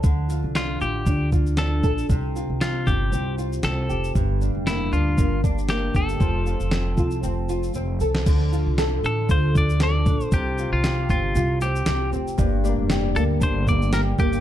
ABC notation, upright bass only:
X:1
M:4/4
L:1/16
Q:"Swing 16ths" 1/4=117
K:Dm
V:1 name="Upright bass" clef=bass
D,,3 C,,3 A,,,2 D,,6 B,,,2 | C,,3 C,,3 G,,,2 C,,4 C,,2 F,,,2 | G,,,3 F,,,3 D,,2 G,,,6 G,,,2 | F,,,3 F,,,3 C,,2 F,,,4 F,,,2 C,,2 |
D,,3 C,,3 A,,,2 D,,6 B,,,2 | C,,3 C,,3 G,,,2 C,,4 C,,2 F,,,2 | G,,,3 F,,,3 D,,2 G,,,6 G,,,2 |]